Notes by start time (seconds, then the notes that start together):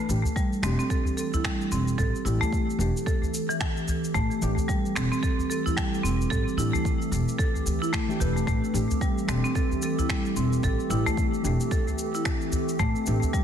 Already playing: E3 A3 C4 G4 A4
0.09 A1 E3 A3 D4 G4, cabasa
0.25 udu, cabasa
0.36 G3, kick, cabasa
0.53 cabasa
0.62 E1 E3 A3 C4 D4, finger snap, cabasa
0.66 G4
0.79 C4, cabasa
0.90 A4, kick, cabasa
1.05 udu, cabasa
1.17 A4, cabasa
1.34 E4, udu, cabasa
1.44 G3, finger snap, kick, cabasa
1.61 cabasa
1.72 E1 C4, cabasa
1.88 cabasa
1.98 A1 A4, kick, cabasa
2.15 cabasa
2.24 A1 E3 A3 D4 E4 G4, cabasa
2.41 A3, udu, cabasa
2.52 kick, cabasa
2.70 cabasa
2.79 E1 E3 A3 D4 G4, cabasa
2.97 cabasa
3.06 A4, kick, cabasa
3.22 udu, cabasa
3.34 cabasa
3.49 E3, cabasa
3.61 finger snap, kick, cabasa
3.77 cabasa
3.88 udu, cabasa
4.04 cabasa
4.14 A1 A3, kick, cabasa
4.31 cabasa
4.41 A1 E3 A3 D4 G4, cabasa
4.57 udu, cabasa
4.68 G3, kick, cabasa
4.86 cabasa
4.96 E1 C4, finger snap, cabasa
5.12 C4, cabasa
5.23 A4, kick, cabasa
5.38 udu, cabasa
5.50 A4, cabasa
5.66 E4, udu, cabasa
5.77 G3, finger snap, kick, cabasa
5.94 cabasa
6.04 E1 C4, cabasa
6.21 cabasa
6.30 A1 A4, kick, cabasa
6.48 cabasa
6.57 A1 E3 A3 D4 E4 G4, cabasa
6.73 A3, udu, cabasa
6.85 kick, cabasa
7.02 cabasa
7.12 E1, cabasa
7.28 cabasa
7.39 A4, kick, cabasa
7.56 udu, cabasa
7.66 D2, cabasa
7.82 E4, cabasa
7.93 A3, finger snap, kick, cabasa
8.08 E3 A3 D4 G4, cabasa
8.19 E1 E3 A3 D4 G4 B4, udu, cabasa
8.36 A3, cabasa
8.47 A1 A3, kick, cabasa
8.64 cabasa
8.73 A1 E3 A3 D4 G4, cabasa
8.91 udu, cabasa
9.01 G3, kick, cabasa
9.18 cabasa
9.26 E1 E3 A3 C4 D4, finger snap, cabasa
9.30 G4
9.44 C4, cabasa
9.55 A4, kick, cabasa
9.71 udu, cabasa
9.82 A4, cabasa
9.99 E4, udu, cabasa
10.09 G3, finger snap, kick, cabasa
10.26 cabasa
10.36 E1 C4, cabasa
10.53 cabasa
10.63 A1 A4, kick, cabasa
10.80 cabasa
10.89 A1 E3 A3 D4 E4 G4, cabasa
11.06 A3, udu, cabasa
11.17 kick, cabasa
11.34 cabasa
11.43 E1 E3 A3 D4 G4, cabasa
11.60 cabasa
11.71 A4, kick, cabasa
11.88 udu, cabasa
11.98 cabasa
12.15 E4, cabasa
12.25 finger snap, kick, cabasa
12.41 cabasa
12.52 udu, cabasa
12.69 cabasa
12.79 A1 A3, kick, cabasa
12.96 cabasa
13.06 A1 E3 A3 D4 G4, cabasa
13.23 udu, cabasa
13.33 G3, kick, cabasa